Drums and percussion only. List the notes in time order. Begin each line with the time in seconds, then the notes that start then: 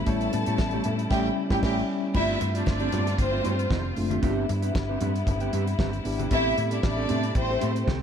0.06 kick, closed hi-hat, muted conga
0.21 closed hi-hat
0.33 closed hi-hat, muted conga
0.46 closed hi-hat
0.58 kick, snare, high conga
0.71 closed hi-hat
0.84 closed hi-hat, low conga
0.99 closed hi-hat
1.10 kick, snare, crash
1.50 kick, snare
1.63 kick, snare, crash
2.14 kick, crash, muted conga
2.41 closed hi-hat, muted conga
2.55 closed hi-hat
2.66 kick, snare, high conga
2.80 closed hi-hat
2.92 closed hi-hat, low conga
3.07 snare, closed hi-hat
3.18 kick, closed hi-hat, muted conga
3.45 closed hi-hat, muted conga
3.59 closed hi-hat
3.71 kick, snare, high conga
3.96 open hi-hat
4.10 closed hi-hat, high conga
4.23 kick, closed hi-hat, muted conga
4.49 closed hi-hat, muted conga
4.63 closed hi-hat
4.75 kick, snare, high conga
5.01 closed hi-hat, low conga
5.16 closed hi-hat
5.27 kick, closed hi-hat, muted conga, low conga
5.40 closed hi-hat
5.53 closed hi-hat, muted conga
5.67 closed hi-hat
5.79 kick, snare, high conga
5.93 closed hi-hat
6.05 open hi-hat
6.20 closed hi-hat, high conga
6.31 kick, closed hi-hat, muted conga
6.58 closed hi-hat, muted conga
6.71 closed hi-hat
6.83 kick, snare, high conga
7.09 closed hi-hat, low conga
7.24 closed hi-hat
7.35 kick, closed hi-hat, muted conga
7.61 closed hi-hat
7.76 closed hi-hat
7.88 kick, snare, high conga